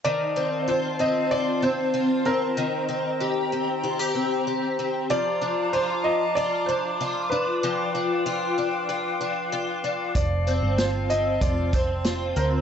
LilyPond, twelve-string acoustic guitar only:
\new Staff \with { instrumentName = "Twelve-string acoustic guitar" } { \time 4/4 \key f \mixolydian \tempo 4 = 95 ees8 c'8 f'8 c'8 f'8 c'8 f'8 c'8 | ees8 c'8 g'8 c'8 f'16 g'16 c'8 g'8 c'8 | f8 d'8 f'4 f'8 d'8 f'8 d'8 | f8 d'8 f'8 d'8 f'8 d'8 f'8 d'8 |
r8 c'8 f'8 c'8 f'8 c'8 f'8 c'8 | }